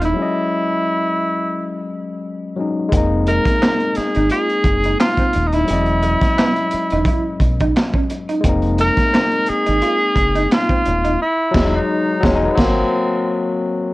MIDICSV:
0, 0, Header, 1, 8, 480
1, 0, Start_track
1, 0, Tempo, 689655
1, 115, Time_signature, 4, 2, 24, 8
1, 9701, End_track
2, 0, Start_track
2, 0, Title_t, "Tenor saxophone"
2, 0, Program_c, 0, 66
2, 32, Note_on_c, 0, 64, 99
2, 1431, Note_off_c, 0, 64, 0
2, 2281, Note_on_c, 0, 70, 110
2, 2762, Note_on_c, 0, 68, 97
2, 2772, Note_off_c, 0, 70, 0
2, 2996, Note_off_c, 0, 68, 0
2, 3000, Note_on_c, 0, 68, 107
2, 3449, Note_off_c, 0, 68, 0
2, 3479, Note_on_c, 0, 65, 100
2, 3809, Note_on_c, 0, 63, 59
2, 3819, Note_off_c, 0, 65, 0
2, 3851, Note_on_c, 0, 64, 104
2, 3862, Note_off_c, 0, 63, 0
2, 5289, Note_off_c, 0, 64, 0
2, 6129, Note_on_c, 0, 70, 127
2, 6605, Note_on_c, 0, 68, 120
2, 6615, Note_off_c, 0, 70, 0
2, 7320, Note_off_c, 0, 68, 0
2, 7329, Note_on_c, 0, 65, 103
2, 7774, Note_off_c, 0, 65, 0
2, 7806, Note_on_c, 0, 64, 100
2, 8126, Note_off_c, 0, 64, 0
2, 8126, Note_on_c, 0, 64, 70
2, 8178, Note_on_c, 0, 63, 105
2, 8188, Note_off_c, 0, 64, 0
2, 8526, Note_on_c, 0, 61, 83
2, 8537, Note_off_c, 0, 63, 0
2, 8653, Note_off_c, 0, 61, 0
2, 8665, Note_on_c, 0, 60, 87
2, 9456, Note_off_c, 0, 60, 0
2, 9701, End_track
3, 0, Start_track
3, 0, Title_t, "Clean electric guitar"
3, 0, Program_c, 1, 27
3, 9, Note_on_c, 1, 63, 73
3, 82, Note_off_c, 1, 63, 0
3, 2282, Note_on_c, 1, 56, 76
3, 2369, Note_off_c, 1, 56, 0
3, 2519, Note_on_c, 1, 60, 73
3, 2607, Note_off_c, 1, 60, 0
3, 2897, Note_on_c, 1, 63, 81
3, 2966, Note_off_c, 1, 63, 0
3, 3007, Note_on_c, 1, 65, 72
3, 3092, Note_off_c, 1, 65, 0
3, 3378, Note_on_c, 1, 63, 73
3, 3447, Note_off_c, 1, 63, 0
3, 3615, Note_on_c, 1, 60, 71
3, 3685, Note_off_c, 1, 60, 0
3, 3853, Note_on_c, 1, 63, 73
3, 3924, Note_off_c, 1, 63, 0
3, 4197, Note_on_c, 1, 56, 80
3, 4286, Note_off_c, 1, 56, 0
3, 4445, Note_on_c, 1, 59, 76
3, 4531, Note_off_c, 1, 59, 0
3, 4820, Note_on_c, 1, 63, 80
3, 4889, Note_off_c, 1, 63, 0
3, 4927, Note_on_c, 1, 64, 74
3, 5012, Note_off_c, 1, 64, 0
3, 5297, Note_on_c, 1, 63, 83
3, 5367, Note_off_c, 1, 63, 0
3, 5532, Note_on_c, 1, 61, 78
3, 5603, Note_off_c, 1, 61, 0
3, 5770, Note_on_c, 1, 63, 79
3, 5842, Note_off_c, 1, 63, 0
3, 6117, Note_on_c, 1, 56, 78
3, 6206, Note_off_c, 1, 56, 0
3, 6356, Note_on_c, 1, 60, 76
3, 6445, Note_off_c, 1, 60, 0
3, 6727, Note_on_c, 1, 63, 76
3, 6800, Note_off_c, 1, 63, 0
3, 6836, Note_on_c, 1, 65, 82
3, 6925, Note_off_c, 1, 65, 0
3, 7207, Note_on_c, 1, 63, 73
3, 7280, Note_off_c, 1, 63, 0
3, 7447, Note_on_c, 1, 60, 69
3, 7520, Note_off_c, 1, 60, 0
3, 7687, Note_on_c, 1, 63, 76
3, 7760, Note_off_c, 1, 63, 0
3, 9701, End_track
4, 0, Start_track
4, 0, Title_t, "Tine electric piano"
4, 0, Program_c, 2, 4
4, 0, Control_c, 2, 64, 127
4, 0, Note_on_c, 2, 56, 85
4, 0, Note_on_c, 2, 58, 77
4, 0, Note_on_c, 2, 60, 76
4, 0, Note_on_c, 2, 63, 85
4, 78, Note_off_c, 2, 56, 0
4, 87, Note_off_c, 2, 58, 0
4, 94, Note_on_c, 2, 54, 67
4, 97, Note_off_c, 2, 60, 0
4, 107, Note_off_c, 2, 63, 0
4, 113, Note_on_c, 2, 56, 64
4, 123, Control_c, 2, 64, 0
4, 131, Note_on_c, 2, 61, 63
4, 152, Note_on_c, 2, 75, 77
4, 241, Control_c, 2, 64, 127
4, 1756, Note_off_c, 2, 54, 0
4, 1766, Note_off_c, 2, 56, 0
4, 1775, Note_off_c, 2, 61, 0
4, 1782, Note_on_c, 2, 54, 64
4, 1786, Note_off_c, 2, 75, 0
4, 1791, Note_on_c, 2, 56, 53
4, 1801, Note_on_c, 2, 61, 53
4, 1813, Note_on_c, 2, 63, 68
4, 2000, Note_off_c, 2, 56, 0
4, 2008, Note_on_c, 2, 56, 81
4, 2028, Note_off_c, 2, 54, 0
4, 2029, Note_on_c, 2, 58, 72
4, 2038, Note_off_c, 2, 61, 0
4, 2043, Control_c, 2, 64, 0
4, 2044, Note_off_c, 2, 63, 0
4, 2049, Note_on_c, 2, 60, 69
4, 2067, Note_on_c, 2, 63, 89
4, 2161, Control_c, 2, 64, 127
4, 3914, Note_off_c, 2, 56, 0
4, 3924, Note_off_c, 2, 58, 0
4, 3932, Note_on_c, 2, 54, 67
4, 3934, Note_off_c, 2, 60, 0
4, 3943, Note_off_c, 2, 63, 0
4, 3951, Note_on_c, 2, 56, 65
4, 3963, Control_c, 2, 64, 0
4, 3972, Note_on_c, 2, 61, 65
4, 3990, Note_on_c, 2, 75, 76
4, 4068, Control_c, 2, 64, 127
4, 5835, Note_off_c, 2, 54, 0
4, 5842, Note_off_c, 2, 56, 0
4, 5851, Note_on_c, 2, 56, 81
4, 5855, Note_off_c, 2, 61, 0
4, 5865, Note_off_c, 2, 75, 0
4, 5871, Note_on_c, 2, 58, 77
4, 5885, Control_c, 2, 64, 0
4, 5891, Note_on_c, 2, 60, 76
4, 5910, Note_on_c, 2, 63, 93
4, 5992, Control_c, 2, 64, 127
4, 7755, Note_off_c, 2, 56, 0
4, 7765, Note_off_c, 2, 58, 0
4, 7775, Note_off_c, 2, 60, 0
4, 7784, Note_off_c, 2, 63, 0
4, 7803, Control_c, 2, 64, 0
4, 7907, Control_c, 2, 64, 127
4, 8012, Note_on_c, 2, 54, 105
4, 8032, Note_on_c, 2, 56, 109
4, 8117, Note_on_c, 2, 63, 100
4, 8189, Note_off_c, 2, 54, 0
4, 8201, Note_off_c, 2, 56, 0
4, 8249, Note_off_c, 2, 63, 0
4, 8495, Note_on_c, 2, 54, 100
4, 8516, Note_on_c, 2, 56, 101
4, 8600, Note_on_c, 2, 63, 95
4, 8671, Note_off_c, 2, 54, 0
4, 8683, Note_off_c, 2, 56, 0
4, 8731, Note_off_c, 2, 63, 0
4, 8736, Note_on_c, 2, 54, 104
4, 8756, Note_on_c, 2, 58, 97
4, 8763, Control_c, 2, 64, 0
4, 8776, Note_on_c, 2, 60, 99
4, 8882, Control_c, 2, 64, 127
4, 8911, Note_off_c, 2, 54, 0
4, 8923, Note_off_c, 2, 58, 0
4, 8934, Note_off_c, 2, 60, 0
4, 9701, End_track
5, 0, Start_track
5, 0, Title_t, "Fingered electric bass"
5, 0, Program_c, 3, 33
5, 0, Note_on_c, 3, 27, 89
5, 83, Note_off_c, 3, 27, 0
5, 2040, Note_on_c, 3, 29, 103
5, 2349, Note_off_c, 3, 29, 0
5, 2900, Note_on_c, 3, 32, 88
5, 2985, Note_off_c, 3, 32, 0
5, 3234, Note_on_c, 3, 30, 84
5, 3435, Note_off_c, 3, 30, 0
5, 3729, Note_on_c, 3, 27, 81
5, 3924, Note_off_c, 3, 27, 0
5, 3970, Note_on_c, 3, 28, 109
5, 4274, Note_off_c, 3, 28, 0
5, 4822, Note_on_c, 3, 28, 83
5, 4906, Note_off_c, 3, 28, 0
5, 5157, Note_on_c, 3, 35, 89
5, 5357, Note_off_c, 3, 35, 0
5, 5881, Note_on_c, 3, 29, 107
5, 6189, Note_off_c, 3, 29, 0
5, 6741, Note_on_c, 3, 32, 89
5, 6825, Note_off_c, 3, 32, 0
5, 7077, Note_on_c, 3, 30, 94
5, 7277, Note_off_c, 3, 30, 0
5, 7568, Note_on_c, 3, 27, 84
5, 7763, Note_off_c, 3, 27, 0
5, 8041, Note_on_c, 3, 28, 107
5, 8206, Note_off_c, 3, 28, 0
5, 8521, Note_on_c, 3, 28, 94
5, 8686, Note_off_c, 3, 28, 0
5, 8761, Note_on_c, 3, 32, 85
5, 8926, Note_off_c, 3, 32, 0
5, 9701, End_track
6, 0, Start_track
6, 0, Title_t, "Muted clean electric guitar strokes"
6, 2765, Note_on_c, 9, 29, 43
6, 2835, Note_off_c, 9, 29, 0
6, 3243, Note_on_c, 9, 29, 46
6, 3313, Note_off_c, 9, 29, 0
6, 3726, Note_on_c, 9, 29, 44
6, 3796, Note_off_c, 9, 29, 0
6, 4684, Note_on_c, 9, 29, 46
6, 4753, Note_off_c, 9, 29, 0
6, 5164, Note_on_c, 9, 29, 49
6, 5233, Note_off_c, 9, 29, 0
6, 5644, Note_on_c, 9, 29, 47
6, 5714, Note_off_c, 9, 29, 0
6, 6598, Note_on_c, 9, 29, 47
6, 6667, Note_off_c, 9, 29, 0
6, 7078, Note_on_c, 9, 29, 46
6, 7148, Note_off_c, 9, 29, 0
6, 7560, Note_on_c, 9, 29, 48
6, 7630, Note_off_c, 9, 29, 0
6, 9701, End_track
7, 0, Start_track
7, 0, Title_t, "Muted fingered electric bass strokes"
7, 2411, Note_on_c, 9, 29, 46
7, 2481, Note_off_c, 9, 29, 0
7, 2767, Note_on_c, 9, 29, 44
7, 2837, Note_off_c, 9, 29, 0
7, 4331, Note_on_c, 9, 29, 56
7, 4401, Note_off_c, 9, 29, 0
7, 4690, Note_on_c, 9, 29, 44
7, 4759, Note_off_c, 9, 29, 0
7, 6251, Note_on_c, 9, 29, 50
7, 6320, Note_off_c, 9, 29, 0
7, 6609, Note_on_c, 9, 29, 48
7, 6679, Note_off_c, 9, 29, 0
7, 9701, End_track
8, 0, Start_track
8, 0, Title_t, "Drums"
8, 10, Note_on_c, 9, 42, 50
8, 79, Note_off_c, 9, 42, 0
8, 2033, Note_on_c, 9, 36, 97
8, 2035, Note_on_c, 9, 42, 91
8, 2102, Note_off_c, 9, 36, 0
8, 2105, Note_off_c, 9, 42, 0
8, 2273, Note_on_c, 9, 42, 71
8, 2343, Note_off_c, 9, 42, 0
8, 2404, Note_on_c, 9, 36, 94
8, 2412, Note_on_c, 9, 42, 51
8, 2414, Note_on_c, 9, 38, 36
8, 2473, Note_off_c, 9, 36, 0
8, 2482, Note_off_c, 9, 42, 0
8, 2484, Note_off_c, 9, 38, 0
8, 2525, Note_on_c, 9, 38, 115
8, 2525, Note_on_c, 9, 39, 88
8, 2595, Note_off_c, 9, 38, 0
8, 2595, Note_off_c, 9, 39, 0
8, 2645, Note_on_c, 9, 42, 32
8, 2715, Note_off_c, 9, 42, 0
8, 2749, Note_on_c, 9, 42, 63
8, 2768, Note_on_c, 9, 38, 35
8, 2819, Note_off_c, 9, 42, 0
8, 2837, Note_off_c, 9, 38, 0
8, 2886, Note_on_c, 9, 42, 44
8, 2955, Note_off_c, 9, 42, 0
8, 2989, Note_on_c, 9, 42, 76
8, 3059, Note_off_c, 9, 42, 0
8, 3127, Note_on_c, 9, 42, 35
8, 3196, Note_off_c, 9, 42, 0
8, 3228, Note_on_c, 9, 36, 86
8, 3233, Note_on_c, 9, 42, 64
8, 3298, Note_off_c, 9, 36, 0
8, 3303, Note_off_c, 9, 42, 0
8, 3365, Note_on_c, 9, 42, 51
8, 3434, Note_off_c, 9, 42, 0
8, 3483, Note_on_c, 9, 38, 124
8, 3483, Note_on_c, 9, 39, 109
8, 3552, Note_off_c, 9, 39, 0
8, 3553, Note_off_c, 9, 38, 0
8, 3601, Note_on_c, 9, 36, 84
8, 3607, Note_on_c, 9, 42, 37
8, 3671, Note_off_c, 9, 36, 0
8, 3677, Note_off_c, 9, 42, 0
8, 3712, Note_on_c, 9, 42, 60
8, 3781, Note_off_c, 9, 42, 0
8, 3847, Note_on_c, 9, 42, 46
8, 3917, Note_off_c, 9, 42, 0
8, 3953, Note_on_c, 9, 42, 94
8, 4023, Note_off_c, 9, 42, 0
8, 4080, Note_on_c, 9, 42, 33
8, 4149, Note_off_c, 9, 42, 0
8, 4194, Note_on_c, 9, 42, 63
8, 4264, Note_off_c, 9, 42, 0
8, 4325, Note_on_c, 9, 36, 97
8, 4333, Note_on_c, 9, 42, 50
8, 4336, Note_on_c, 9, 38, 36
8, 4394, Note_off_c, 9, 36, 0
8, 4403, Note_off_c, 9, 42, 0
8, 4405, Note_off_c, 9, 38, 0
8, 4446, Note_on_c, 9, 38, 117
8, 4446, Note_on_c, 9, 39, 99
8, 4516, Note_off_c, 9, 38, 0
8, 4516, Note_off_c, 9, 39, 0
8, 4565, Note_on_c, 9, 42, 36
8, 4634, Note_off_c, 9, 42, 0
8, 4669, Note_on_c, 9, 42, 66
8, 4739, Note_off_c, 9, 42, 0
8, 4805, Note_on_c, 9, 42, 47
8, 4874, Note_off_c, 9, 42, 0
8, 4908, Note_on_c, 9, 36, 106
8, 4913, Note_on_c, 9, 42, 69
8, 4978, Note_off_c, 9, 36, 0
8, 4982, Note_off_c, 9, 42, 0
8, 5151, Note_on_c, 9, 36, 81
8, 5158, Note_on_c, 9, 42, 60
8, 5221, Note_off_c, 9, 36, 0
8, 5228, Note_off_c, 9, 42, 0
8, 5290, Note_on_c, 9, 42, 51
8, 5295, Note_on_c, 9, 36, 102
8, 5360, Note_off_c, 9, 42, 0
8, 5364, Note_off_c, 9, 36, 0
8, 5407, Note_on_c, 9, 38, 123
8, 5407, Note_on_c, 9, 39, 101
8, 5477, Note_off_c, 9, 38, 0
8, 5477, Note_off_c, 9, 39, 0
8, 5524, Note_on_c, 9, 36, 89
8, 5593, Note_off_c, 9, 36, 0
8, 5636, Note_on_c, 9, 42, 59
8, 5705, Note_off_c, 9, 42, 0
8, 5769, Note_on_c, 9, 42, 47
8, 5839, Note_off_c, 9, 42, 0
8, 5875, Note_on_c, 9, 36, 113
8, 5876, Note_on_c, 9, 42, 96
8, 5944, Note_off_c, 9, 36, 0
8, 5946, Note_off_c, 9, 42, 0
8, 6001, Note_on_c, 9, 42, 39
8, 6070, Note_off_c, 9, 42, 0
8, 6114, Note_on_c, 9, 42, 70
8, 6183, Note_off_c, 9, 42, 0
8, 6245, Note_on_c, 9, 36, 91
8, 6253, Note_on_c, 9, 42, 50
8, 6256, Note_on_c, 9, 38, 35
8, 6315, Note_off_c, 9, 36, 0
8, 6323, Note_off_c, 9, 42, 0
8, 6325, Note_off_c, 9, 38, 0
8, 6367, Note_on_c, 9, 38, 118
8, 6367, Note_on_c, 9, 39, 92
8, 6436, Note_off_c, 9, 39, 0
8, 6437, Note_off_c, 9, 38, 0
8, 6484, Note_on_c, 9, 42, 33
8, 6554, Note_off_c, 9, 42, 0
8, 6587, Note_on_c, 9, 42, 68
8, 6656, Note_off_c, 9, 42, 0
8, 6726, Note_on_c, 9, 42, 49
8, 6796, Note_off_c, 9, 42, 0
8, 6834, Note_on_c, 9, 42, 68
8, 6903, Note_off_c, 9, 42, 0
8, 7070, Note_on_c, 9, 36, 80
8, 7076, Note_on_c, 9, 42, 64
8, 7140, Note_off_c, 9, 36, 0
8, 7145, Note_off_c, 9, 42, 0
8, 7207, Note_on_c, 9, 42, 48
8, 7276, Note_off_c, 9, 42, 0
8, 7324, Note_on_c, 9, 38, 127
8, 7324, Note_on_c, 9, 39, 108
8, 7393, Note_off_c, 9, 39, 0
8, 7394, Note_off_c, 9, 38, 0
8, 7443, Note_on_c, 9, 36, 85
8, 7450, Note_on_c, 9, 42, 38
8, 7512, Note_off_c, 9, 36, 0
8, 7520, Note_off_c, 9, 42, 0
8, 7554, Note_on_c, 9, 42, 64
8, 7624, Note_off_c, 9, 42, 0
8, 7688, Note_on_c, 9, 42, 50
8, 7757, Note_off_c, 9, 42, 0
8, 8034, Note_on_c, 9, 36, 106
8, 8035, Note_on_c, 9, 49, 78
8, 8046, Note_on_c, 9, 38, 102
8, 8104, Note_off_c, 9, 36, 0
8, 8104, Note_off_c, 9, 49, 0
8, 8115, Note_off_c, 9, 38, 0
8, 8515, Note_on_c, 9, 36, 106
8, 8526, Note_on_c, 9, 38, 112
8, 8584, Note_off_c, 9, 36, 0
8, 8595, Note_off_c, 9, 38, 0
8, 8754, Note_on_c, 9, 49, 89
8, 8755, Note_on_c, 9, 36, 108
8, 8766, Note_on_c, 9, 38, 120
8, 8824, Note_off_c, 9, 49, 0
8, 8825, Note_off_c, 9, 36, 0
8, 8835, Note_off_c, 9, 38, 0
8, 9701, End_track
0, 0, End_of_file